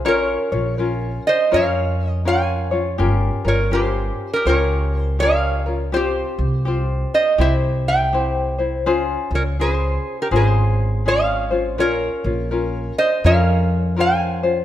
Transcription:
0.05 A#1 C#4 F4 A#4 C#5
0.52 A#1 C#4 F4 C#5
0.78 C#4 F4 A#4
1.27 C5 D#5
1.52 F2 C#4 F4 A#4 C#5 F5
1.56 C#5
2.09 D#5
2.25 C#4 F4 A#4 C#5 F5 G#5
2.71 C#4 F4 C#5
2.98 G1 C#4 F4 G4 A#4
3.45 G1 C#4 F4 A#4 C#5
3.72 C#4 F4 G4 A#4 C5
4.33 G4 A#4
4.46 C#2 C#4 F4 G4 A#4 C#5
4.99 C5
5.19 C#4 F4 G4 A#4 C#5 F5
5.66 C#4 F4 A#4
5.92 C2 C4 F4 G4 C5
5.96 G4
6.39 C2
6.65 C4 F4 G4 C5
7.14 C5 D#5
7.38 C2 C4 E4 G4 C5 E5
7.88 E5 G5
8.13 C4 E4 G4 C5
8.58 C4 E4 C5
8.85 C#2 C#4 F4 G#4 C5
9.31 C#2 C#4 F4
9.35 A#4 C#5
9.59 C#4 F4 G#4 C5
10.22 G4 A#4
10.31 G#1 C#4 F4 G#4 C5
10.36 G#4 C5
11.05 C#4 F4 G#4 C#5 F5
11.51 C#4 F4 C5
11.78 A#1 C#4 F4 A#4 C#5
12.24 A#1 C#4 F4
12.51 C#4 F4 A#4
12.98 C5 D#5
13.24 F2 C#4 F4 A#4 C#5 F5
13.96 C#4 F4 A#4 C5 F5
14.01 G#5
14.43 C#4 F4 C5

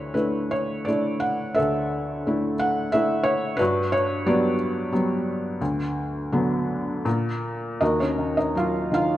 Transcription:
Already playing: D2 D4 E4 B4 C#5
0.14 A3 D4 E4 B4
0.51 C#5
0.85 A3 D4 E4 D5
1.20 F#5
1.55 D2 A4 E5
2.27 A3 D4 E4
2.59 F#5
2.92 A3 D4 E4 E5
3.23 C#5
3.57 D4 F#4 B4
3.61 G2
3.92 C#5
4.26 F#3 G3 B3 F#4 B4 D5
4.92 F#3 G3 B3
5.61 D2
6.32 D3 F#3 B3
7.05 A#2
7.81 D#2 D#4 F#4 A#4 D#5
8.00 C#4 C#5
8.18 D#3
8.37 D#4 D#5
8.55 F#3 F4 F5
8.92 D#3 F4 F5

